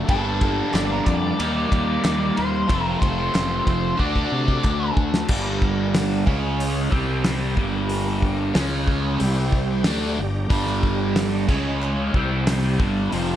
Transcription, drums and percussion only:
0.09 kick loud
0.09 ride medium
0.41 kick medium
0.41 ride medium
0.74 snare medium
0.74 clap medium
0.74 ride medium
1.06 kick medium
1.06 clap medium
1.06 ride medium
1.40 ride medium
1.72 kick medium
1.72 ride medium
2.04 snare loud
2.04 clap loud
2.04 ride medium
2.37 ride medium
2.69 kick loud
2.69 ride loud
3.02 kick medium
3.02 ride medium
3.35 snare loud
3.35 clap medium
3.35 ride medium
3.67 kick medium
3.67 ride medium
3.99 kick medium
4.16 kick medium
4.48 kick medium
4.64 kick medium
4.64 clap medium
4.97 kick medium
5.14 snare loud
5.28 kick loud
5.28 crash loud
5.62 kick medium
5.94 snare loud
5.94 open hi-hat medium
6.27 kick medium
6.60 open hi-hat medium
6.92 kick medium
7.24 snare loud
7.24 open hi-hat medium
7.57 kick medium
7.89 open hi-hat medium
8.22 kick medium
8.55 snare loud
8.55 open hi-hat medium
8.88 kick medium
9.20 open hi-hat medium
9.52 kick medium
9.84 snare loud
9.84 open hi-hat medium
10.50 kick loud
10.50 open hi-hat medium
10.67 snare soft
10.83 kick medium
11.16 snare loud
11.16 clap medium
11.16 open hi-hat medium
11.49 kick medium
11.49 crash medium
11.82 clap medium
12.14 kick medium
12.47 snare loud
12.47 clap medium
12.47 open hi-hat medium
12.80 kick loud
13.12 open hi-hat medium

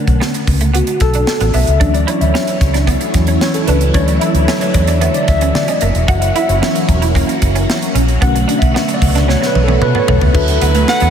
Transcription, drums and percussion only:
0.07 kick medium
0.07 closed hi-hat soft
0.22 snare loud
0.34 closed hi-hat medium
0.47 kick medium
0.47 open hi-hat medium
0.61 closed hi-hat medium
0.75 closed hi-hat medium
0.87 closed hi-hat soft
1.00 kick medium
1.00 snare soft
1.00 closed hi-hat medium
1.14 closed hi-hat medium
1.27 snare loud
1.40 closed hi-hat medium
1.54 open hi-hat medium
1.67 closed hi-hat soft
1.81 kick loud
1.81 closed hi-hat medium
1.94 closed hi-hat medium
2.08 closed hi-hat medium
2.21 closed hi-hat soft
2.35 snare loud
2.47 closed hi-hat medium
2.61 kick medium
2.61 snare soft
2.61 closed hi-hat medium
2.74 snare soft
2.74 closed hi-hat medium
2.87 kick medium
2.87 closed hi-hat medium
3.01 closed hi-hat soft
3.14 kick medium
3.14 snare soft
3.14 closed hi-hat medium
3.27 closed hi-hat medium
3.41 snare loud
3.54 closed hi-hat soft
3.68 closed hi-hat medium
3.81 closed hi-hat soft
3.94 kick loud
3.94 closed hi-hat medium
4.08 closed hi-hat medium
4.21 closed hi-hat medium
4.35 closed hi-hat soft
4.48 snare loud
4.61 closed hi-hat medium
4.74 kick medium
4.74 closed hi-hat medium
4.87 closed hi-hat medium
5.02 closed hi-hat medium
5.14 closed hi-hat soft
5.28 kick medium
5.28 snare soft
5.28 closed hi-hat medium
5.41 closed hi-hat medium
5.55 snare loud
5.68 closed hi-hat medium
5.81 closed hi-hat medium
5.95 closed hi-hat soft
6.08 kick loud
6.08 closed hi-hat medium
6.22 closed hi-hat medium
6.36 closed hi-hat medium
6.49 closed hi-hat soft
6.63 snare loud
6.75 closed hi-hat medium
6.89 kick medium
6.89 closed hi-hat medium
7.02 closed hi-hat medium
7.15 kick medium
7.15 closed hi-hat medium
7.29 closed hi-hat medium
7.42 kick medium
7.42 closed hi-hat medium
7.56 closed hi-hat medium
7.70 snare loud
7.82 closed hi-hat medium
7.95 closed hi-hat medium
8.08 closed hi-hat soft
8.22 kick loud
8.22 closed hi-hat medium
8.36 closed hi-hat medium
8.49 closed hi-hat medium
8.62 kick medium
8.62 closed hi-hat medium
8.76 snare loud
8.89 closed hi-hat medium
9.02 kick medium
9.02 open hi-hat medium
9.16 snare soft
9.16 closed hi-hat medium
9.29 snare medium
9.43 snare medium
9.55 high tom medium
9.68 high tom medium
9.82 mid tom medium
9.95 mid tom medium
10.08 floor tom loud
10.21 floor tom medium
10.35 kick loud
10.35 crash medium
10.48 closed hi-hat medium
10.62 closed hi-hat medium
10.75 closed hi-hat medium
10.88 snare loud
11.00 closed hi-hat medium

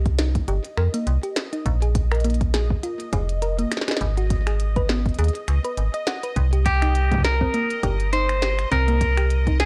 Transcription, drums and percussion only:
0.06 kick loud
0.06 closed hi-hat soft
0.19 snare loud
0.19 closed hi-hat medium
0.35 kick loud
0.35 closed hi-hat soft
0.48 closed hi-hat medium
0.65 closed hi-hat soft
0.77 finger snap medium
0.94 closed hi-hat loud
1.07 closed hi-hat medium
1.23 closed hi-hat soft
1.36 snare loud
1.36 closed hi-hat loud
1.53 closed hi-hat soft
1.66 kick medium
1.66 closed hi-hat medium
1.82 closed hi-hat soft
1.95 kick loud
1.95 closed hi-hat medium
2.12 finger snap medium
2.12 closed hi-hat soft
2.15 closed hi-hat soft
2.20 closed hi-hat soft
2.25 closed hi-hat medium
2.30 closed hi-hat soft
2.34 closed hi-hat soft
2.41 kick loud
2.41 closed hi-hat soft
2.54 snare loud
2.54 closed hi-hat medium
2.70 kick loud
2.83 closed hi-hat medium
3.00 closed hi-hat soft
3.13 kick loud
3.13 closed hi-hat medium
3.13 percussion blips medium
3.29 closed hi-hat soft
3.42 closed hi-hat medium
3.59 closed hi-hat soft
3.72 finger snap medium
3.72 snare medium
3.72 closed hi-hat medium
3.77 snare medium
3.81 snare medium
3.88 finger snap medium
3.88 snare medium
3.88 closed hi-hat soft
3.91 snare loud
3.97 snare loud
4.01 kick medium
4.01 closed hi-hat medium
4.17 closed hi-hat soft
4.30 kick loud
4.30 closed hi-hat medium
4.47 finger snap medium
4.47 closed hi-hat soft
4.60 closed hi-hat medium
4.76 kick loud
4.76 closed hi-hat soft
4.89 snare loud
5.06 kick loud
5.06 closed hi-hat soft
5.09 closed hi-hat soft
5.14 closed hi-hat soft
5.19 closed hi-hat medium
5.24 closed hi-hat soft
5.28 closed hi-hat soft
5.35 closed hi-hat soft
5.48 finger snap medium
5.48 closed hi-hat medium
5.65 closed hi-hat soft
5.77 closed hi-hat medium
5.94 closed hi-hat soft
6.07 snare loud
6.07 closed hi-hat medium
6.23 closed hi-hat soft
6.36 kick medium
6.36 closed hi-hat medium
6.53 closed hi-hat soft
6.66 kick loud
6.66 closed hi-hat medium
6.82 finger snap medium
6.82 closed hi-hat soft
6.95 closed hi-hat medium
7.12 kick loud
7.12 closed hi-hat soft
7.14 kick medium
7.18 kick medium
7.20 kick soft
7.22 kick soft
7.22 snare loud
7.22 closed hi-hat medium
7.41 kick loud
7.54 closed hi-hat medium
7.70 closed hi-hat soft
7.83 kick loud
7.83 closed hi-hat medium
7.83 percussion blips medium
8.00 closed hi-hat soft
8.13 closed hi-hat medium
8.29 finger snap medium
8.29 closed hi-hat soft
8.42 snare loud
8.42 closed hi-hat medium
8.59 finger snap soft
8.59 closed hi-hat soft
8.72 kick medium
8.72 closed hi-hat medium
8.88 closed hi-hat soft
9.01 kick loud
9.01 closed hi-hat medium
9.17 finger snap medium
9.17 closed hi-hat soft
9.30 closed hi-hat medium
9.47 kick loud
9.47 closed hi-hat soft
9.60 snare loud
9.60 closed hi-hat medium

